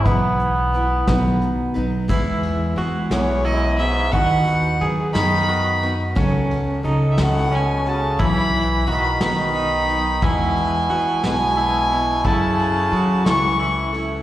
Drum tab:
CC |------|x-----|------|------|
RD |------|-xxxxx|xxxxxx|xxxxxx|
HH |xxxxxx|------|------|------|
SD |---o--|---o--|---o--|---o--|
BD |o--o--|o-----|o-----|o-----|

CC |------|------|------|
RD |xxxxxx|xxxxxx|xxxxxx|
HH |------|------|------|
SD |---o--|---o--|---o--|
BD |o-----|o-----|o-----|